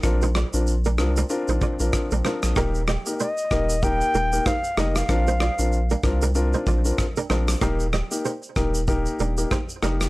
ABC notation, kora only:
X:1
M:4/4
L:1/16
Q:"Swing 16ths" 1/4=95
K:Eb
V:1 name="Kora"
z [Ec] [Fd] z2 [DB] z [DB] z [Ec] [Fd] z2 [DB] [Ec] z | [EB] z [Ge] z [Ec]2 z4 [DB] z [Ec] z [DB] z | z [Ec] [Fd] z2 [DB] z [DB] z [Ec] [Fd] z2 [DB] [Ec] z | [EB] z [Ge] z [Ec]2 z4 [DB] z [Ec] z [DB] z |]